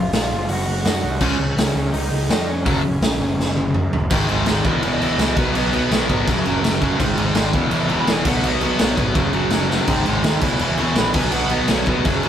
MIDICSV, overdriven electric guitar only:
0, 0, Header, 1, 2, 480
1, 0, Start_track
1, 0, Tempo, 361446
1, 1616, Time_signature, 4, 2, 24, 8
1, 16317, End_track
2, 0, Start_track
2, 0, Title_t, "Overdriven electric guitar"
2, 0, Program_c, 0, 29
2, 1611, Note_on_c, 0, 49, 83
2, 1617, Note_on_c, 0, 56, 96
2, 1626, Note_on_c, 0, 61, 92
2, 1806, Note_off_c, 0, 49, 0
2, 1809, Note_off_c, 0, 56, 0
2, 1813, Note_off_c, 0, 61, 0
2, 3529, Note_on_c, 0, 42, 83
2, 3535, Note_on_c, 0, 49, 81
2, 3542, Note_on_c, 0, 54, 104
2, 3725, Note_off_c, 0, 42, 0
2, 3728, Note_off_c, 0, 49, 0
2, 3731, Note_off_c, 0, 54, 0
2, 5448, Note_on_c, 0, 44, 90
2, 5455, Note_on_c, 0, 51, 82
2, 5458, Note_on_c, 0, 56, 92
2, 5685, Note_off_c, 0, 44, 0
2, 5693, Note_off_c, 0, 51, 0
2, 5696, Note_off_c, 0, 56, 0
2, 5701, Note_on_c, 0, 44, 73
2, 5709, Note_on_c, 0, 51, 79
2, 5712, Note_on_c, 0, 56, 86
2, 5921, Note_off_c, 0, 44, 0
2, 5924, Note_off_c, 0, 51, 0
2, 5930, Note_off_c, 0, 56, 0
2, 5937, Note_on_c, 0, 44, 93
2, 5940, Note_on_c, 0, 51, 89
2, 5946, Note_on_c, 0, 56, 114
2, 6156, Note_off_c, 0, 44, 0
2, 6161, Note_on_c, 0, 40, 98
2, 6163, Note_off_c, 0, 51, 0
2, 6166, Note_off_c, 0, 56, 0
2, 6175, Note_on_c, 0, 47, 100
2, 6175, Note_on_c, 0, 52, 102
2, 6382, Note_off_c, 0, 40, 0
2, 6392, Note_off_c, 0, 47, 0
2, 6392, Note_off_c, 0, 52, 0
2, 6398, Note_on_c, 0, 40, 99
2, 6408, Note_on_c, 0, 47, 110
2, 6408, Note_on_c, 0, 52, 103
2, 6627, Note_off_c, 0, 40, 0
2, 6633, Note_off_c, 0, 47, 0
2, 6643, Note_on_c, 0, 40, 80
2, 6645, Note_off_c, 0, 52, 0
2, 6649, Note_on_c, 0, 47, 83
2, 6660, Note_on_c, 0, 52, 99
2, 6872, Note_off_c, 0, 40, 0
2, 6883, Note_off_c, 0, 47, 0
2, 6883, Note_off_c, 0, 52, 0
2, 6888, Note_on_c, 0, 40, 93
2, 6899, Note_on_c, 0, 47, 99
2, 6899, Note_on_c, 0, 52, 95
2, 7117, Note_off_c, 0, 40, 0
2, 7122, Note_off_c, 0, 47, 0
2, 7122, Note_off_c, 0, 52, 0
2, 7136, Note_on_c, 0, 47, 100
2, 7140, Note_on_c, 0, 54, 116
2, 7151, Note_on_c, 0, 59, 112
2, 7361, Note_off_c, 0, 47, 0
2, 7375, Note_off_c, 0, 59, 0
2, 7377, Note_off_c, 0, 54, 0
2, 7377, Note_on_c, 0, 47, 84
2, 7391, Note_on_c, 0, 59, 96
2, 7393, Note_on_c, 0, 54, 88
2, 7594, Note_off_c, 0, 47, 0
2, 7598, Note_off_c, 0, 54, 0
2, 7607, Note_off_c, 0, 59, 0
2, 7610, Note_on_c, 0, 47, 76
2, 7614, Note_on_c, 0, 54, 84
2, 7623, Note_on_c, 0, 59, 91
2, 7846, Note_off_c, 0, 47, 0
2, 7851, Note_off_c, 0, 54, 0
2, 7853, Note_off_c, 0, 59, 0
2, 7862, Note_on_c, 0, 47, 88
2, 7867, Note_on_c, 0, 54, 94
2, 7869, Note_on_c, 0, 59, 93
2, 8083, Note_off_c, 0, 47, 0
2, 8091, Note_off_c, 0, 54, 0
2, 8095, Note_off_c, 0, 59, 0
2, 8099, Note_on_c, 0, 47, 89
2, 8107, Note_on_c, 0, 54, 96
2, 8110, Note_on_c, 0, 59, 101
2, 8321, Note_off_c, 0, 47, 0
2, 8325, Note_off_c, 0, 54, 0
2, 8327, Note_off_c, 0, 59, 0
2, 8336, Note_on_c, 0, 42, 106
2, 8341, Note_on_c, 0, 49, 98
2, 8344, Note_on_c, 0, 54, 107
2, 8561, Note_off_c, 0, 42, 0
2, 8575, Note_off_c, 0, 49, 0
2, 8577, Note_on_c, 0, 42, 86
2, 8579, Note_off_c, 0, 54, 0
2, 8591, Note_on_c, 0, 49, 93
2, 8595, Note_on_c, 0, 54, 85
2, 8789, Note_off_c, 0, 42, 0
2, 8793, Note_off_c, 0, 49, 0
2, 8797, Note_off_c, 0, 54, 0
2, 8805, Note_on_c, 0, 42, 98
2, 8808, Note_on_c, 0, 49, 85
2, 8813, Note_on_c, 0, 54, 94
2, 9025, Note_off_c, 0, 42, 0
2, 9033, Note_off_c, 0, 49, 0
2, 9041, Note_on_c, 0, 42, 96
2, 9043, Note_off_c, 0, 54, 0
2, 9049, Note_on_c, 0, 49, 98
2, 9059, Note_on_c, 0, 54, 95
2, 9266, Note_off_c, 0, 42, 0
2, 9272, Note_on_c, 0, 44, 85
2, 9276, Note_off_c, 0, 49, 0
2, 9281, Note_off_c, 0, 54, 0
2, 9284, Note_on_c, 0, 51, 89
2, 9286, Note_on_c, 0, 56, 90
2, 9500, Note_off_c, 0, 44, 0
2, 9507, Note_off_c, 0, 51, 0
2, 9513, Note_off_c, 0, 56, 0
2, 9516, Note_on_c, 0, 44, 94
2, 9523, Note_on_c, 0, 51, 81
2, 9529, Note_on_c, 0, 56, 99
2, 9745, Note_off_c, 0, 44, 0
2, 9754, Note_off_c, 0, 51, 0
2, 9759, Note_off_c, 0, 56, 0
2, 9761, Note_on_c, 0, 44, 97
2, 9770, Note_on_c, 0, 51, 99
2, 9775, Note_on_c, 0, 56, 110
2, 9991, Note_off_c, 0, 44, 0
2, 9996, Note_off_c, 0, 51, 0
2, 9996, Note_on_c, 0, 40, 98
2, 9998, Note_off_c, 0, 56, 0
2, 10003, Note_on_c, 0, 52, 112
2, 10007, Note_on_c, 0, 47, 100
2, 10212, Note_off_c, 0, 47, 0
2, 10215, Note_off_c, 0, 40, 0
2, 10221, Note_off_c, 0, 52, 0
2, 10228, Note_on_c, 0, 47, 96
2, 10231, Note_on_c, 0, 40, 101
2, 10237, Note_on_c, 0, 52, 98
2, 10451, Note_off_c, 0, 40, 0
2, 10459, Note_off_c, 0, 47, 0
2, 10461, Note_off_c, 0, 52, 0
2, 10467, Note_on_c, 0, 40, 93
2, 10475, Note_on_c, 0, 47, 91
2, 10477, Note_on_c, 0, 52, 98
2, 10700, Note_off_c, 0, 40, 0
2, 10708, Note_off_c, 0, 47, 0
2, 10716, Note_on_c, 0, 40, 93
2, 10717, Note_off_c, 0, 52, 0
2, 10724, Note_on_c, 0, 47, 100
2, 10733, Note_on_c, 0, 52, 99
2, 10949, Note_off_c, 0, 40, 0
2, 10949, Note_off_c, 0, 47, 0
2, 10957, Note_off_c, 0, 52, 0
2, 10965, Note_on_c, 0, 47, 92
2, 10965, Note_on_c, 0, 54, 115
2, 10970, Note_on_c, 0, 59, 115
2, 11193, Note_off_c, 0, 47, 0
2, 11196, Note_off_c, 0, 54, 0
2, 11199, Note_off_c, 0, 59, 0
2, 11209, Note_on_c, 0, 47, 87
2, 11212, Note_on_c, 0, 54, 85
2, 11215, Note_on_c, 0, 59, 88
2, 11417, Note_off_c, 0, 47, 0
2, 11417, Note_off_c, 0, 54, 0
2, 11420, Note_off_c, 0, 59, 0
2, 11433, Note_on_c, 0, 47, 82
2, 11433, Note_on_c, 0, 54, 86
2, 11436, Note_on_c, 0, 59, 92
2, 11658, Note_off_c, 0, 47, 0
2, 11660, Note_off_c, 0, 54, 0
2, 11668, Note_off_c, 0, 59, 0
2, 11674, Note_on_c, 0, 47, 94
2, 11676, Note_on_c, 0, 54, 97
2, 11684, Note_on_c, 0, 59, 90
2, 11890, Note_off_c, 0, 47, 0
2, 11898, Note_off_c, 0, 54, 0
2, 11900, Note_off_c, 0, 59, 0
2, 11906, Note_on_c, 0, 47, 77
2, 11914, Note_on_c, 0, 54, 104
2, 11916, Note_on_c, 0, 59, 100
2, 12138, Note_on_c, 0, 42, 92
2, 12139, Note_off_c, 0, 54, 0
2, 12141, Note_off_c, 0, 47, 0
2, 12146, Note_on_c, 0, 49, 108
2, 12149, Note_off_c, 0, 59, 0
2, 12155, Note_on_c, 0, 54, 92
2, 12365, Note_off_c, 0, 42, 0
2, 12374, Note_off_c, 0, 54, 0
2, 12375, Note_off_c, 0, 49, 0
2, 12381, Note_on_c, 0, 42, 86
2, 12390, Note_on_c, 0, 54, 86
2, 12391, Note_on_c, 0, 49, 98
2, 12616, Note_off_c, 0, 42, 0
2, 12617, Note_off_c, 0, 49, 0
2, 12626, Note_off_c, 0, 54, 0
2, 12632, Note_on_c, 0, 42, 87
2, 12633, Note_on_c, 0, 49, 89
2, 12641, Note_on_c, 0, 54, 96
2, 12849, Note_off_c, 0, 42, 0
2, 12855, Note_off_c, 0, 49, 0
2, 12860, Note_off_c, 0, 54, 0
2, 12865, Note_on_c, 0, 42, 96
2, 12871, Note_on_c, 0, 49, 99
2, 12876, Note_on_c, 0, 54, 97
2, 13101, Note_off_c, 0, 42, 0
2, 13106, Note_on_c, 0, 44, 88
2, 13107, Note_off_c, 0, 49, 0
2, 13109, Note_off_c, 0, 54, 0
2, 13115, Note_on_c, 0, 51, 88
2, 13122, Note_on_c, 0, 56, 87
2, 13327, Note_off_c, 0, 44, 0
2, 13341, Note_off_c, 0, 51, 0
2, 13341, Note_off_c, 0, 56, 0
2, 13343, Note_on_c, 0, 44, 82
2, 13357, Note_on_c, 0, 51, 82
2, 13357, Note_on_c, 0, 56, 92
2, 13565, Note_off_c, 0, 44, 0
2, 13580, Note_off_c, 0, 51, 0
2, 13581, Note_off_c, 0, 56, 0
2, 13581, Note_on_c, 0, 44, 84
2, 13596, Note_on_c, 0, 51, 102
2, 13597, Note_on_c, 0, 56, 99
2, 13810, Note_off_c, 0, 44, 0
2, 13816, Note_on_c, 0, 40, 98
2, 13822, Note_off_c, 0, 51, 0
2, 13828, Note_on_c, 0, 47, 107
2, 13830, Note_off_c, 0, 56, 0
2, 13836, Note_on_c, 0, 52, 107
2, 14059, Note_off_c, 0, 40, 0
2, 14061, Note_off_c, 0, 47, 0
2, 14070, Note_off_c, 0, 52, 0
2, 14075, Note_on_c, 0, 40, 93
2, 14077, Note_on_c, 0, 47, 109
2, 14086, Note_on_c, 0, 52, 112
2, 14304, Note_off_c, 0, 40, 0
2, 14309, Note_off_c, 0, 47, 0
2, 14317, Note_off_c, 0, 52, 0
2, 14320, Note_on_c, 0, 40, 97
2, 14325, Note_on_c, 0, 47, 86
2, 14333, Note_on_c, 0, 52, 93
2, 14549, Note_off_c, 0, 40, 0
2, 14555, Note_off_c, 0, 47, 0
2, 14564, Note_off_c, 0, 52, 0
2, 14565, Note_on_c, 0, 40, 85
2, 14571, Note_on_c, 0, 47, 90
2, 14580, Note_on_c, 0, 52, 109
2, 14779, Note_off_c, 0, 47, 0
2, 14792, Note_off_c, 0, 52, 0
2, 14795, Note_off_c, 0, 40, 0
2, 14795, Note_on_c, 0, 47, 105
2, 14798, Note_on_c, 0, 54, 110
2, 14805, Note_on_c, 0, 59, 123
2, 15005, Note_off_c, 0, 54, 0
2, 15007, Note_off_c, 0, 47, 0
2, 15010, Note_off_c, 0, 59, 0
2, 15021, Note_on_c, 0, 54, 93
2, 15023, Note_on_c, 0, 47, 93
2, 15026, Note_on_c, 0, 59, 99
2, 15254, Note_off_c, 0, 47, 0
2, 15260, Note_off_c, 0, 54, 0
2, 15269, Note_off_c, 0, 59, 0
2, 15270, Note_on_c, 0, 47, 83
2, 15276, Note_on_c, 0, 54, 74
2, 15284, Note_on_c, 0, 59, 83
2, 15505, Note_off_c, 0, 47, 0
2, 15510, Note_off_c, 0, 54, 0
2, 15514, Note_off_c, 0, 59, 0
2, 15521, Note_on_c, 0, 47, 88
2, 15526, Note_on_c, 0, 54, 109
2, 15530, Note_on_c, 0, 59, 97
2, 15744, Note_off_c, 0, 47, 0
2, 15745, Note_off_c, 0, 54, 0
2, 15749, Note_off_c, 0, 59, 0
2, 15760, Note_on_c, 0, 47, 96
2, 15761, Note_on_c, 0, 54, 91
2, 15765, Note_on_c, 0, 59, 93
2, 15994, Note_off_c, 0, 47, 0
2, 15994, Note_off_c, 0, 54, 0
2, 15996, Note_off_c, 0, 59, 0
2, 15999, Note_on_c, 0, 42, 101
2, 16005, Note_on_c, 0, 49, 108
2, 16013, Note_on_c, 0, 54, 123
2, 16232, Note_off_c, 0, 42, 0
2, 16237, Note_off_c, 0, 49, 0
2, 16242, Note_off_c, 0, 54, 0
2, 16248, Note_on_c, 0, 42, 90
2, 16253, Note_on_c, 0, 49, 91
2, 16258, Note_on_c, 0, 54, 104
2, 16317, Note_off_c, 0, 42, 0
2, 16317, Note_off_c, 0, 49, 0
2, 16317, Note_off_c, 0, 54, 0
2, 16317, End_track
0, 0, End_of_file